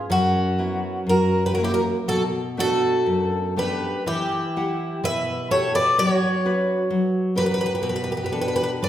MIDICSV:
0, 0, Header, 1, 4, 480
1, 0, Start_track
1, 0, Key_signature, 2, "minor"
1, 0, Tempo, 993377
1, 43, Time_signature, 2, 2, 24, 8
1, 1965, Tempo, 969305
1, 2445, Tempo, 933126
1, 3885, Tempo, 986842
1, 4397, End_track
2, 0, Start_track
2, 0, Title_t, "Twelve-string acoustic guitar"
2, 0, Program_c, 0, 25
2, 0, Note_on_c, 0, 68, 78
2, 56, Note_on_c, 0, 66, 90
2, 67, Note_off_c, 0, 68, 0
2, 528, Note_on_c, 0, 70, 74
2, 537, Note_off_c, 0, 66, 0
2, 692, Note_off_c, 0, 70, 0
2, 706, Note_on_c, 0, 71, 68
2, 745, Note_off_c, 0, 71, 0
2, 747, Note_on_c, 0, 70, 62
2, 790, Note_off_c, 0, 70, 0
2, 794, Note_on_c, 0, 67, 74
2, 837, Note_off_c, 0, 67, 0
2, 840, Note_on_c, 0, 70, 71
2, 882, Note_off_c, 0, 70, 0
2, 1008, Note_on_c, 0, 69, 94
2, 1074, Note_off_c, 0, 69, 0
2, 1257, Note_on_c, 0, 69, 98
2, 1710, Note_off_c, 0, 69, 0
2, 1734, Note_on_c, 0, 71, 79
2, 1951, Note_off_c, 0, 71, 0
2, 1969, Note_on_c, 0, 67, 90
2, 2450, Note_off_c, 0, 67, 0
2, 2452, Note_on_c, 0, 76, 102
2, 2688, Note_off_c, 0, 76, 0
2, 2691, Note_on_c, 0, 73, 90
2, 2801, Note_off_c, 0, 73, 0
2, 2813, Note_on_c, 0, 74, 94
2, 2921, Note_off_c, 0, 74, 0
2, 2936, Note_on_c, 0, 73, 105
2, 3625, Note_off_c, 0, 73, 0
2, 3648, Note_on_c, 0, 71, 88
2, 3679, Note_off_c, 0, 71, 0
2, 3692, Note_on_c, 0, 71, 63
2, 3720, Note_off_c, 0, 71, 0
2, 3733, Note_on_c, 0, 71, 66
2, 3759, Note_off_c, 0, 71, 0
2, 3768, Note_on_c, 0, 71, 64
2, 3788, Note_off_c, 0, 71, 0
2, 3794, Note_on_c, 0, 71, 62
2, 3826, Note_off_c, 0, 71, 0
2, 3840, Note_on_c, 0, 71, 46
2, 3868, Note_off_c, 0, 71, 0
2, 3881, Note_on_c, 0, 71, 58
2, 3906, Note_off_c, 0, 71, 0
2, 3913, Note_on_c, 0, 71, 52
2, 3939, Note_off_c, 0, 71, 0
2, 3944, Note_on_c, 0, 71, 65
2, 3973, Note_off_c, 0, 71, 0
2, 3983, Note_on_c, 0, 71, 55
2, 4011, Note_off_c, 0, 71, 0
2, 4023, Note_on_c, 0, 71, 49
2, 4042, Note_off_c, 0, 71, 0
2, 4048, Note_on_c, 0, 71, 45
2, 4079, Note_off_c, 0, 71, 0
2, 4091, Note_on_c, 0, 71, 60
2, 4117, Note_off_c, 0, 71, 0
2, 4123, Note_on_c, 0, 71, 51
2, 4154, Note_off_c, 0, 71, 0
2, 4167, Note_on_c, 0, 71, 68
2, 4194, Note_off_c, 0, 71, 0
2, 4199, Note_on_c, 0, 71, 57
2, 4229, Note_off_c, 0, 71, 0
2, 4236, Note_on_c, 0, 71, 75
2, 4266, Note_off_c, 0, 71, 0
2, 4274, Note_on_c, 0, 71, 60
2, 4304, Note_off_c, 0, 71, 0
2, 4372, Note_on_c, 0, 74, 82
2, 4397, Note_off_c, 0, 74, 0
2, 4397, End_track
3, 0, Start_track
3, 0, Title_t, "Twelve-string acoustic guitar"
3, 0, Program_c, 1, 25
3, 49, Note_on_c, 1, 61, 63
3, 500, Note_off_c, 1, 61, 0
3, 533, Note_on_c, 1, 66, 66
3, 695, Note_off_c, 1, 66, 0
3, 706, Note_on_c, 1, 67, 62
3, 742, Note_off_c, 1, 67, 0
3, 743, Note_on_c, 1, 66, 62
3, 785, Note_off_c, 1, 66, 0
3, 790, Note_on_c, 1, 64, 57
3, 823, Note_off_c, 1, 64, 0
3, 825, Note_on_c, 1, 66, 64
3, 871, Note_off_c, 1, 66, 0
3, 1005, Note_on_c, 1, 66, 59
3, 1071, Note_off_c, 1, 66, 0
3, 1252, Note_on_c, 1, 66, 75
3, 1708, Note_off_c, 1, 66, 0
3, 1730, Note_on_c, 1, 67, 78
3, 1949, Note_off_c, 1, 67, 0
3, 1965, Note_on_c, 1, 64, 66
3, 2425, Note_off_c, 1, 64, 0
3, 2447, Note_on_c, 1, 71, 80
3, 2671, Note_off_c, 1, 71, 0
3, 2688, Note_on_c, 1, 69, 80
3, 2799, Note_off_c, 1, 69, 0
3, 2813, Note_on_c, 1, 71, 71
3, 2921, Note_off_c, 1, 71, 0
3, 2931, Note_on_c, 1, 66, 79
3, 3623, Note_off_c, 1, 66, 0
3, 3653, Note_on_c, 1, 67, 76
3, 3680, Note_off_c, 1, 67, 0
3, 3686, Note_on_c, 1, 67, 52
3, 3711, Note_off_c, 1, 67, 0
3, 3717, Note_on_c, 1, 67, 58
3, 3747, Note_off_c, 1, 67, 0
3, 3753, Note_on_c, 1, 67, 52
3, 3787, Note_off_c, 1, 67, 0
3, 3798, Note_on_c, 1, 67, 48
3, 3828, Note_off_c, 1, 67, 0
3, 3839, Note_on_c, 1, 67, 51
3, 3867, Note_off_c, 1, 67, 0
3, 3875, Note_on_c, 1, 67, 53
3, 3903, Note_off_c, 1, 67, 0
3, 3915, Note_on_c, 1, 67, 34
3, 3937, Note_off_c, 1, 67, 0
3, 3942, Note_on_c, 1, 67, 43
3, 3972, Note_off_c, 1, 67, 0
3, 3984, Note_on_c, 1, 67, 40
3, 4011, Note_off_c, 1, 67, 0
3, 4018, Note_on_c, 1, 67, 49
3, 4041, Note_off_c, 1, 67, 0
3, 4047, Note_on_c, 1, 67, 39
3, 4077, Note_off_c, 1, 67, 0
3, 4083, Note_on_c, 1, 67, 51
3, 4115, Note_off_c, 1, 67, 0
3, 4120, Note_on_c, 1, 67, 44
3, 4152, Note_off_c, 1, 67, 0
3, 4166, Note_on_c, 1, 67, 52
3, 4190, Note_off_c, 1, 67, 0
3, 4196, Note_on_c, 1, 67, 46
3, 4227, Note_off_c, 1, 67, 0
3, 4235, Note_on_c, 1, 67, 58
3, 4262, Note_off_c, 1, 67, 0
3, 4267, Note_on_c, 1, 67, 55
3, 4300, Note_off_c, 1, 67, 0
3, 4366, Note_on_c, 1, 71, 75
3, 4397, Note_off_c, 1, 71, 0
3, 4397, End_track
4, 0, Start_track
4, 0, Title_t, "Nylon-string guitar"
4, 0, Program_c, 2, 24
4, 47, Note_on_c, 2, 42, 73
4, 282, Note_on_c, 2, 54, 46
4, 284, Note_on_c, 2, 59, 44
4, 287, Note_on_c, 2, 64, 51
4, 471, Note_off_c, 2, 54, 0
4, 471, Note_off_c, 2, 59, 0
4, 474, Note_off_c, 2, 64, 0
4, 504, Note_off_c, 2, 42, 0
4, 515, Note_on_c, 2, 42, 64
4, 756, Note_on_c, 2, 54, 49
4, 758, Note_on_c, 2, 58, 45
4, 761, Note_on_c, 2, 64, 53
4, 953, Note_off_c, 2, 54, 0
4, 954, Note_off_c, 2, 58, 0
4, 955, Note_off_c, 2, 64, 0
4, 987, Note_off_c, 2, 42, 0
4, 1006, Note_on_c, 2, 47, 71
4, 1243, Note_on_c, 2, 57, 49
4, 1244, Note_on_c, 2, 62, 55
4, 1247, Note_on_c, 2, 59, 44
4, 1474, Note_off_c, 2, 47, 0
4, 1480, Note_on_c, 2, 42, 60
4, 1626, Note_off_c, 2, 57, 0
4, 1628, Note_off_c, 2, 62, 0
4, 1629, Note_off_c, 2, 59, 0
4, 1722, Note_on_c, 2, 57, 53
4, 1726, Note_on_c, 2, 62, 57
4, 1727, Note_on_c, 2, 59, 49
4, 1914, Note_off_c, 2, 57, 0
4, 1916, Note_off_c, 2, 59, 0
4, 1916, Note_off_c, 2, 62, 0
4, 1945, Note_off_c, 2, 42, 0
4, 1963, Note_on_c, 2, 52, 70
4, 2211, Note_on_c, 2, 64, 53
4, 2214, Note_on_c, 2, 67, 61
4, 2214, Note_on_c, 2, 78, 52
4, 2429, Note_off_c, 2, 52, 0
4, 2445, Note_on_c, 2, 47, 71
4, 2593, Note_off_c, 2, 64, 0
4, 2593, Note_off_c, 2, 78, 0
4, 2594, Note_off_c, 2, 67, 0
4, 2695, Note_on_c, 2, 66, 47
4, 2696, Note_on_c, 2, 64, 61
4, 2697, Note_on_c, 2, 67, 59
4, 2883, Note_off_c, 2, 64, 0
4, 2884, Note_off_c, 2, 66, 0
4, 2885, Note_off_c, 2, 67, 0
4, 2913, Note_off_c, 2, 47, 0
4, 2932, Note_on_c, 2, 54, 72
4, 3173, Note_on_c, 2, 61, 55
4, 3175, Note_on_c, 2, 66, 52
4, 3177, Note_on_c, 2, 71, 65
4, 3360, Note_off_c, 2, 61, 0
4, 3361, Note_off_c, 2, 66, 0
4, 3361, Note_off_c, 2, 71, 0
4, 3390, Note_off_c, 2, 54, 0
4, 3406, Note_on_c, 2, 54, 68
4, 3637, Note_on_c, 2, 61, 53
4, 3639, Note_on_c, 2, 66, 52
4, 3641, Note_on_c, 2, 70, 57
4, 3833, Note_off_c, 2, 61, 0
4, 3834, Note_off_c, 2, 66, 0
4, 3836, Note_off_c, 2, 70, 0
4, 3872, Note_off_c, 2, 54, 0
4, 3881, Note_on_c, 2, 47, 63
4, 4122, Note_on_c, 2, 59, 53
4, 4124, Note_on_c, 2, 69, 55
4, 4125, Note_on_c, 2, 62, 46
4, 4347, Note_off_c, 2, 47, 0
4, 4363, Note_on_c, 2, 42, 53
4, 4397, Note_off_c, 2, 42, 0
4, 4397, Note_off_c, 2, 59, 0
4, 4397, Note_off_c, 2, 62, 0
4, 4397, Note_off_c, 2, 69, 0
4, 4397, End_track
0, 0, End_of_file